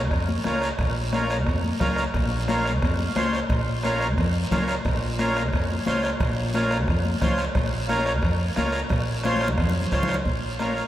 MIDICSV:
0, 0, Header, 1, 5, 480
1, 0, Start_track
1, 0, Key_signature, -5, "minor"
1, 0, Tempo, 338409
1, 1121, Time_signature, 4, 2, 24, 8
1, 15425, End_track
2, 0, Start_track
2, 0, Title_t, "Accordion"
2, 0, Program_c, 0, 21
2, 638, Note_on_c, 0, 61, 82
2, 645, Note_on_c, 0, 65, 75
2, 647, Note_on_c, 0, 70, 89
2, 975, Note_off_c, 0, 61, 0
2, 979, Note_off_c, 0, 65, 0
2, 980, Note_off_c, 0, 70, 0
2, 1599, Note_on_c, 0, 61, 92
2, 1606, Note_on_c, 0, 65, 83
2, 1614, Note_on_c, 0, 70, 92
2, 1936, Note_off_c, 0, 61, 0
2, 1940, Note_off_c, 0, 65, 0
2, 1944, Note_off_c, 0, 70, 0
2, 2549, Note_on_c, 0, 61, 80
2, 2556, Note_on_c, 0, 65, 73
2, 2559, Note_on_c, 0, 70, 93
2, 2891, Note_off_c, 0, 61, 0
2, 2894, Note_off_c, 0, 65, 0
2, 2896, Note_off_c, 0, 70, 0
2, 3512, Note_on_c, 0, 61, 89
2, 3517, Note_on_c, 0, 65, 81
2, 3526, Note_on_c, 0, 70, 96
2, 3852, Note_off_c, 0, 61, 0
2, 3855, Note_off_c, 0, 65, 0
2, 3859, Note_off_c, 0, 70, 0
2, 4471, Note_on_c, 0, 61, 81
2, 4476, Note_on_c, 0, 65, 76
2, 4483, Note_on_c, 0, 72, 94
2, 4811, Note_off_c, 0, 61, 0
2, 4813, Note_off_c, 0, 65, 0
2, 4817, Note_off_c, 0, 72, 0
2, 5434, Note_on_c, 0, 61, 86
2, 5441, Note_on_c, 0, 65, 81
2, 5446, Note_on_c, 0, 70, 100
2, 5772, Note_off_c, 0, 61, 0
2, 5775, Note_off_c, 0, 65, 0
2, 5778, Note_off_c, 0, 70, 0
2, 6399, Note_on_c, 0, 61, 85
2, 6403, Note_on_c, 0, 65, 80
2, 6413, Note_on_c, 0, 70, 86
2, 6733, Note_off_c, 0, 61, 0
2, 6735, Note_off_c, 0, 65, 0
2, 6741, Note_off_c, 0, 70, 0
2, 7355, Note_on_c, 0, 61, 91
2, 7359, Note_on_c, 0, 65, 82
2, 7368, Note_on_c, 0, 70, 98
2, 7691, Note_off_c, 0, 61, 0
2, 7693, Note_off_c, 0, 65, 0
2, 7697, Note_off_c, 0, 70, 0
2, 8313, Note_on_c, 0, 61, 86
2, 8316, Note_on_c, 0, 65, 79
2, 8322, Note_on_c, 0, 72, 91
2, 8649, Note_off_c, 0, 61, 0
2, 8651, Note_off_c, 0, 65, 0
2, 8654, Note_off_c, 0, 72, 0
2, 9277, Note_on_c, 0, 61, 91
2, 9283, Note_on_c, 0, 65, 81
2, 9291, Note_on_c, 0, 70, 97
2, 9611, Note_off_c, 0, 61, 0
2, 9614, Note_off_c, 0, 65, 0
2, 9618, Note_off_c, 0, 70, 0
2, 10222, Note_on_c, 0, 61, 81
2, 10229, Note_on_c, 0, 65, 78
2, 10233, Note_on_c, 0, 72, 91
2, 10563, Note_off_c, 0, 61, 0
2, 10567, Note_off_c, 0, 65, 0
2, 10569, Note_off_c, 0, 72, 0
2, 11184, Note_on_c, 0, 65, 85
2, 11186, Note_on_c, 0, 61, 91
2, 11194, Note_on_c, 0, 70, 104
2, 11524, Note_off_c, 0, 65, 0
2, 11525, Note_off_c, 0, 61, 0
2, 11529, Note_off_c, 0, 70, 0
2, 12143, Note_on_c, 0, 61, 86
2, 12144, Note_on_c, 0, 65, 76
2, 12150, Note_on_c, 0, 70, 93
2, 12484, Note_off_c, 0, 61, 0
2, 12484, Note_off_c, 0, 65, 0
2, 12487, Note_off_c, 0, 70, 0
2, 13111, Note_on_c, 0, 61, 88
2, 13114, Note_on_c, 0, 65, 84
2, 13126, Note_on_c, 0, 72, 104
2, 13448, Note_off_c, 0, 61, 0
2, 13450, Note_off_c, 0, 65, 0
2, 13456, Note_off_c, 0, 72, 0
2, 14068, Note_on_c, 0, 61, 86
2, 14072, Note_on_c, 0, 65, 77
2, 14076, Note_on_c, 0, 72, 92
2, 14408, Note_off_c, 0, 61, 0
2, 14410, Note_off_c, 0, 65, 0
2, 14412, Note_off_c, 0, 72, 0
2, 15033, Note_on_c, 0, 61, 82
2, 15039, Note_on_c, 0, 65, 70
2, 15044, Note_on_c, 0, 70, 84
2, 15372, Note_off_c, 0, 61, 0
2, 15375, Note_off_c, 0, 65, 0
2, 15377, Note_off_c, 0, 70, 0
2, 15425, End_track
3, 0, Start_track
3, 0, Title_t, "Upright bass"
3, 0, Program_c, 1, 32
3, 0, Note_on_c, 1, 34, 110
3, 157, Note_off_c, 1, 34, 0
3, 157, Note_on_c, 1, 41, 89
3, 543, Note_off_c, 1, 41, 0
3, 642, Note_on_c, 1, 37, 85
3, 1026, Note_off_c, 1, 37, 0
3, 1117, Note_on_c, 1, 34, 102
3, 2083, Note_off_c, 1, 34, 0
3, 2083, Note_on_c, 1, 41, 88
3, 2466, Note_off_c, 1, 41, 0
3, 2558, Note_on_c, 1, 37, 84
3, 2943, Note_off_c, 1, 37, 0
3, 3039, Note_on_c, 1, 34, 105
3, 4002, Note_off_c, 1, 34, 0
3, 4002, Note_on_c, 1, 41, 92
3, 4385, Note_off_c, 1, 41, 0
3, 4476, Note_on_c, 1, 37, 84
3, 4861, Note_off_c, 1, 37, 0
3, 4956, Note_on_c, 1, 34, 112
3, 5917, Note_off_c, 1, 34, 0
3, 5917, Note_on_c, 1, 41, 91
3, 6301, Note_off_c, 1, 41, 0
3, 6404, Note_on_c, 1, 37, 88
3, 6785, Note_off_c, 1, 37, 0
3, 6881, Note_on_c, 1, 34, 101
3, 7840, Note_off_c, 1, 34, 0
3, 7840, Note_on_c, 1, 41, 95
3, 8222, Note_off_c, 1, 41, 0
3, 8322, Note_on_c, 1, 37, 85
3, 8703, Note_off_c, 1, 37, 0
3, 8799, Note_on_c, 1, 34, 112
3, 9756, Note_off_c, 1, 34, 0
3, 9756, Note_on_c, 1, 41, 91
3, 10138, Note_off_c, 1, 41, 0
3, 10237, Note_on_c, 1, 37, 84
3, 10619, Note_off_c, 1, 37, 0
3, 10712, Note_on_c, 1, 34, 105
3, 11665, Note_off_c, 1, 34, 0
3, 11665, Note_on_c, 1, 41, 94
3, 12052, Note_off_c, 1, 41, 0
3, 12154, Note_on_c, 1, 37, 90
3, 12538, Note_off_c, 1, 37, 0
3, 12624, Note_on_c, 1, 34, 106
3, 13590, Note_off_c, 1, 34, 0
3, 13590, Note_on_c, 1, 41, 93
3, 13976, Note_off_c, 1, 41, 0
3, 14071, Note_on_c, 1, 37, 93
3, 14457, Note_off_c, 1, 37, 0
3, 14546, Note_on_c, 1, 34, 86
3, 15320, Note_off_c, 1, 34, 0
3, 15425, End_track
4, 0, Start_track
4, 0, Title_t, "Two-headed folk drums"
4, 157, Note_on_c, 9, 36, 90
4, 157, Note_on_c, 9, 37, 88
4, 299, Note_off_c, 9, 36, 0
4, 299, Note_off_c, 9, 37, 0
4, 629, Note_on_c, 9, 37, 83
4, 771, Note_off_c, 9, 37, 0
4, 875, Note_on_c, 9, 37, 79
4, 1016, Note_off_c, 9, 37, 0
4, 1116, Note_on_c, 9, 36, 85
4, 1116, Note_on_c, 9, 37, 93
4, 1258, Note_off_c, 9, 36, 0
4, 1258, Note_off_c, 9, 37, 0
4, 1599, Note_on_c, 9, 37, 86
4, 1741, Note_off_c, 9, 37, 0
4, 1850, Note_on_c, 9, 37, 90
4, 1992, Note_off_c, 9, 37, 0
4, 2079, Note_on_c, 9, 37, 82
4, 2081, Note_on_c, 9, 36, 82
4, 2220, Note_off_c, 9, 37, 0
4, 2223, Note_off_c, 9, 36, 0
4, 2555, Note_on_c, 9, 37, 83
4, 2559, Note_on_c, 9, 36, 70
4, 2697, Note_off_c, 9, 37, 0
4, 2701, Note_off_c, 9, 36, 0
4, 2785, Note_on_c, 9, 37, 79
4, 2927, Note_off_c, 9, 37, 0
4, 3035, Note_on_c, 9, 37, 87
4, 3038, Note_on_c, 9, 36, 88
4, 3177, Note_off_c, 9, 37, 0
4, 3180, Note_off_c, 9, 36, 0
4, 3520, Note_on_c, 9, 37, 83
4, 3661, Note_off_c, 9, 37, 0
4, 3765, Note_on_c, 9, 37, 85
4, 3906, Note_off_c, 9, 37, 0
4, 4000, Note_on_c, 9, 36, 86
4, 4006, Note_on_c, 9, 37, 90
4, 4142, Note_off_c, 9, 36, 0
4, 4148, Note_off_c, 9, 37, 0
4, 4487, Note_on_c, 9, 37, 85
4, 4629, Note_off_c, 9, 37, 0
4, 4727, Note_on_c, 9, 37, 84
4, 4869, Note_off_c, 9, 37, 0
4, 4958, Note_on_c, 9, 36, 89
4, 4963, Note_on_c, 9, 37, 90
4, 5100, Note_off_c, 9, 36, 0
4, 5105, Note_off_c, 9, 37, 0
4, 5438, Note_on_c, 9, 37, 84
4, 5580, Note_off_c, 9, 37, 0
4, 5678, Note_on_c, 9, 37, 84
4, 5820, Note_off_c, 9, 37, 0
4, 5919, Note_on_c, 9, 36, 90
4, 5926, Note_on_c, 9, 37, 88
4, 6061, Note_off_c, 9, 36, 0
4, 6068, Note_off_c, 9, 37, 0
4, 6401, Note_on_c, 9, 36, 67
4, 6415, Note_on_c, 9, 37, 78
4, 6543, Note_off_c, 9, 36, 0
4, 6557, Note_off_c, 9, 37, 0
4, 6642, Note_on_c, 9, 37, 81
4, 6784, Note_off_c, 9, 37, 0
4, 6880, Note_on_c, 9, 36, 88
4, 6889, Note_on_c, 9, 37, 84
4, 7022, Note_off_c, 9, 36, 0
4, 7031, Note_off_c, 9, 37, 0
4, 7364, Note_on_c, 9, 37, 89
4, 7506, Note_off_c, 9, 37, 0
4, 7612, Note_on_c, 9, 37, 85
4, 7754, Note_off_c, 9, 37, 0
4, 7840, Note_on_c, 9, 36, 85
4, 7851, Note_on_c, 9, 37, 89
4, 7982, Note_off_c, 9, 36, 0
4, 7993, Note_off_c, 9, 37, 0
4, 8332, Note_on_c, 9, 37, 78
4, 8474, Note_off_c, 9, 37, 0
4, 8563, Note_on_c, 9, 37, 83
4, 8705, Note_off_c, 9, 37, 0
4, 8797, Note_on_c, 9, 36, 84
4, 8802, Note_on_c, 9, 37, 92
4, 8939, Note_off_c, 9, 36, 0
4, 8944, Note_off_c, 9, 37, 0
4, 9290, Note_on_c, 9, 37, 81
4, 9432, Note_off_c, 9, 37, 0
4, 9517, Note_on_c, 9, 37, 91
4, 9659, Note_off_c, 9, 37, 0
4, 9755, Note_on_c, 9, 36, 86
4, 9759, Note_on_c, 9, 37, 82
4, 9896, Note_off_c, 9, 36, 0
4, 9901, Note_off_c, 9, 37, 0
4, 10232, Note_on_c, 9, 36, 72
4, 10235, Note_on_c, 9, 37, 88
4, 10374, Note_off_c, 9, 36, 0
4, 10377, Note_off_c, 9, 37, 0
4, 10471, Note_on_c, 9, 37, 81
4, 10613, Note_off_c, 9, 37, 0
4, 10710, Note_on_c, 9, 37, 90
4, 10711, Note_on_c, 9, 36, 94
4, 10852, Note_off_c, 9, 37, 0
4, 10853, Note_off_c, 9, 36, 0
4, 11198, Note_on_c, 9, 37, 79
4, 11340, Note_off_c, 9, 37, 0
4, 11433, Note_on_c, 9, 37, 88
4, 11575, Note_off_c, 9, 37, 0
4, 11666, Note_on_c, 9, 36, 86
4, 11669, Note_on_c, 9, 37, 87
4, 11807, Note_off_c, 9, 36, 0
4, 11811, Note_off_c, 9, 37, 0
4, 12144, Note_on_c, 9, 37, 86
4, 12286, Note_off_c, 9, 37, 0
4, 12381, Note_on_c, 9, 37, 82
4, 12523, Note_off_c, 9, 37, 0
4, 12627, Note_on_c, 9, 36, 90
4, 12629, Note_on_c, 9, 37, 87
4, 12769, Note_off_c, 9, 36, 0
4, 12770, Note_off_c, 9, 37, 0
4, 13099, Note_on_c, 9, 37, 88
4, 13241, Note_off_c, 9, 37, 0
4, 13347, Note_on_c, 9, 37, 93
4, 13489, Note_off_c, 9, 37, 0
4, 13585, Note_on_c, 9, 37, 86
4, 13587, Note_on_c, 9, 36, 85
4, 13727, Note_off_c, 9, 37, 0
4, 13729, Note_off_c, 9, 36, 0
4, 14070, Note_on_c, 9, 36, 70
4, 14077, Note_on_c, 9, 37, 81
4, 14212, Note_off_c, 9, 36, 0
4, 14219, Note_off_c, 9, 37, 0
4, 14311, Note_on_c, 9, 37, 87
4, 14453, Note_off_c, 9, 37, 0
4, 14546, Note_on_c, 9, 36, 80
4, 14688, Note_off_c, 9, 36, 0
4, 15027, Note_on_c, 9, 37, 76
4, 15169, Note_off_c, 9, 37, 0
4, 15425, End_track
5, 0, Start_track
5, 0, Title_t, "Drums"
5, 161, Note_on_c, 9, 74, 73
5, 303, Note_off_c, 9, 74, 0
5, 404, Note_on_c, 9, 63, 69
5, 546, Note_off_c, 9, 63, 0
5, 635, Note_on_c, 9, 63, 87
5, 641, Note_on_c, 9, 73, 64
5, 777, Note_off_c, 9, 63, 0
5, 783, Note_off_c, 9, 73, 0
5, 882, Note_on_c, 9, 73, 71
5, 1024, Note_off_c, 9, 73, 0
5, 1115, Note_on_c, 9, 74, 66
5, 1257, Note_off_c, 9, 74, 0
5, 1599, Note_on_c, 9, 63, 82
5, 1599, Note_on_c, 9, 73, 65
5, 1740, Note_off_c, 9, 73, 0
5, 1741, Note_off_c, 9, 63, 0
5, 1845, Note_on_c, 9, 73, 70
5, 1987, Note_off_c, 9, 73, 0
5, 2082, Note_on_c, 9, 74, 70
5, 2224, Note_off_c, 9, 74, 0
5, 2327, Note_on_c, 9, 63, 69
5, 2469, Note_off_c, 9, 63, 0
5, 2562, Note_on_c, 9, 73, 62
5, 2565, Note_on_c, 9, 63, 85
5, 2565, Note_on_c, 9, 64, 82
5, 2704, Note_off_c, 9, 73, 0
5, 2707, Note_off_c, 9, 63, 0
5, 2707, Note_off_c, 9, 64, 0
5, 2806, Note_on_c, 9, 73, 68
5, 2948, Note_off_c, 9, 73, 0
5, 3041, Note_on_c, 9, 74, 68
5, 3182, Note_off_c, 9, 74, 0
5, 3525, Note_on_c, 9, 73, 70
5, 3527, Note_on_c, 9, 63, 85
5, 3666, Note_off_c, 9, 73, 0
5, 3669, Note_off_c, 9, 63, 0
5, 3771, Note_on_c, 9, 73, 70
5, 3913, Note_off_c, 9, 73, 0
5, 4009, Note_on_c, 9, 74, 74
5, 4151, Note_off_c, 9, 74, 0
5, 4249, Note_on_c, 9, 63, 73
5, 4391, Note_off_c, 9, 63, 0
5, 4485, Note_on_c, 9, 73, 67
5, 4488, Note_on_c, 9, 63, 90
5, 4626, Note_off_c, 9, 73, 0
5, 4630, Note_off_c, 9, 63, 0
5, 4726, Note_on_c, 9, 73, 70
5, 4867, Note_off_c, 9, 73, 0
5, 4967, Note_on_c, 9, 74, 65
5, 5109, Note_off_c, 9, 74, 0
5, 5439, Note_on_c, 9, 73, 69
5, 5457, Note_on_c, 9, 63, 80
5, 5580, Note_off_c, 9, 73, 0
5, 5599, Note_off_c, 9, 63, 0
5, 5685, Note_on_c, 9, 73, 70
5, 5827, Note_off_c, 9, 73, 0
5, 5933, Note_on_c, 9, 74, 72
5, 6075, Note_off_c, 9, 74, 0
5, 6402, Note_on_c, 9, 73, 69
5, 6412, Note_on_c, 9, 63, 87
5, 6412, Note_on_c, 9, 64, 91
5, 6544, Note_off_c, 9, 73, 0
5, 6554, Note_off_c, 9, 63, 0
5, 6554, Note_off_c, 9, 64, 0
5, 6635, Note_on_c, 9, 73, 72
5, 6777, Note_off_c, 9, 73, 0
5, 6875, Note_on_c, 9, 74, 65
5, 7017, Note_off_c, 9, 74, 0
5, 7358, Note_on_c, 9, 73, 73
5, 7362, Note_on_c, 9, 63, 86
5, 7499, Note_off_c, 9, 73, 0
5, 7504, Note_off_c, 9, 63, 0
5, 7607, Note_on_c, 9, 73, 71
5, 7749, Note_off_c, 9, 73, 0
5, 7839, Note_on_c, 9, 74, 74
5, 7981, Note_off_c, 9, 74, 0
5, 8091, Note_on_c, 9, 63, 72
5, 8233, Note_off_c, 9, 63, 0
5, 8315, Note_on_c, 9, 63, 92
5, 8320, Note_on_c, 9, 73, 70
5, 8457, Note_off_c, 9, 63, 0
5, 8462, Note_off_c, 9, 73, 0
5, 8557, Note_on_c, 9, 73, 74
5, 8699, Note_off_c, 9, 73, 0
5, 8797, Note_on_c, 9, 74, 70
5, 8939, Note_off_c, 9, 74, 0
5, 9277, Note_on_c, 9, 63, 84
5, 9277, Note_on_c, 9, 73, 65
5, 9419, Note_off_c, 9, 63, 0
5, 9419, Note_off_c, 9, 73, 0
5, 9513, Note_on_c, 9, 73, 72
5, 9655, Note_off_c, 9, 73, 0
5, 9753, Note_on_c, 9, 74, 72
5, 9895, Note_off_c, 9, 74, 0
5, 9995, Note_on_c, 9, 63, 76
5, 10137, Note_off_c, 9, 63, 0
5, 10231, Note_on_c, 9, 73, 65
5, 10241, Note_on_c, 9, 63, 90
5, 10241, Note_on_c, 9, 64, 90
5, 10373, Note_off_c, 9, 73, 0
5, 10383, Note_off_c, 9, 63, 0
5, 10383, Note_off_c, 9, 64, 0
5, 10468, Note_on_c, 9, 73, 72
5, 10610, Note_off_c, 9, 73, 0
5, 10708, Note_on_c, 9, 74, 70
5, 10849, Note_off_c, 9, 74, 0
5, 11192, Note_on_c, 9, 73, 69
5, 11197, Note_on_c, 9, 63, 87
5, 11334, Note_off_c, 9, 73, 0
5, 11339, Note_off_c, 9, 63, 0
5, 11426, Note_on_c, 9, 73, 73
5, 11568, Note_off_c, 9, 73, 0
5, 11660, Note_on_c, 9, 74, 72
5, 11802, Note_off_c, 9, 74, 0
5, 12136, Note_on_c, 9, 73, 66
5, 12165, Note_on_c, 9, 63, 89
5, 12278, Note_off_c, 9, 73, 0
5, 12307, Note_off_c, 9, 63, 0
5, 12375, Note_on_c, 9, 73, 71
5, 12516, Note_off_c, 9, 73, 0
5, 12614, Note_on_c, 9, 74, 69
5, 12756, Note_off_c, 9, 74, 0
5, 13098, Note_on_c, 9, 73, 68
5, 13121, Note_on_c, 9, 63, 91
5, 13240, Note_off_c, 9, 73, 0
5, 13263, Note_off_c, 9, 63, 0
5, 13283, Note_on_c, 9, 63, 102
5, 13345, Note_on_c, 9, 73, 67
5, 13425, Note_off_c, 9, 63, 0
5, 13448, Note_on_c, 9, 64, 81
5, 13487, Note_off_c, 9, 73, 0
5, 13584, Note_on_c, 9, 74, 71
5, 13590, Note_off_c, 9, 64, 0
5, 13726, Note_off_c, 9, 74, 0
5, 13749, Note_on_c, 9, 64, 81
5, 13891, Note_off_c, 9, 64, 0
5, 13921, Note_on_c, 9, 64, 75
5, 14061, Note_on_c, 9, 73, 68
5, 14063, Note_off_c, 9, 64, 0
5, 14202, Note_off_c, 9, 73, 0
5, 14227, Note_on_c, 9, 64, 97
5, 14293, Note_on_c, 9, 73, 70
5, 14369, Note_off_c, 9, 64, 0
5, 14383, Note_on_c, 9, 64, 80
5, 14435, Note_off_c, 9, 73, 0
5, 14525, Note_off_c, 9, 64, 0
5, 14544, Note_on_c, 9, 74, 62
5, 14685, Note_off_c, 9, 74, 0
5, 15024, Note_on_c, 9, 73, 59
5, 15034, Note_on_c, 9, 63, 76
5, 15166, Note_off_c, 9, 73, 0
5, 15176, Note_off_c, 9, 63, 0
5, 15267, Note_on_c, 9, 73, 65
5, 15409, Note_off_c, 9, 73, 0
5, 15425, End_track
0, 0, End_of_file